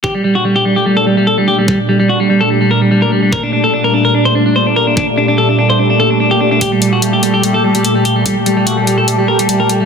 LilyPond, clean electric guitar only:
\new Staff \with { instrumentName = "Clean electric guitar" } { \time 4/4 \key g \minor \tempo 4 = 146 g'16 g16 g16 fis'16 g16 g'16 g16 g'16 g16 a'16 g16 g16 a'16 g16 g'16 g16 | g16 r16 g16 g16 fis'16 g16 g16 a'16 g16 g16 bes'16 g16 g16 bes'16 g16 g16 | bes'16 d'16 d'16 a'16 d'16 bes'16 d'16 bes'16 d'16 c''16 d'16 d'16 c''16 d'16 bes'16 d'16 | d'16 r16 d'16 d'16 a'16 d'16 d'16 c''16 d'16 d'16 a'16 d'16 d'16 g'16 d'16 d'16 |
g'16 g16 g16 fis'16 g16 g'16 g16 g'16 g16 a'16 g16 g16 a'16 g16 g'16 g16 | g16 r16 g16 g16 fis'16 g16 g16 a'16 g16 g16 bes'16 g16 g16 bes'16 g16 g16 | }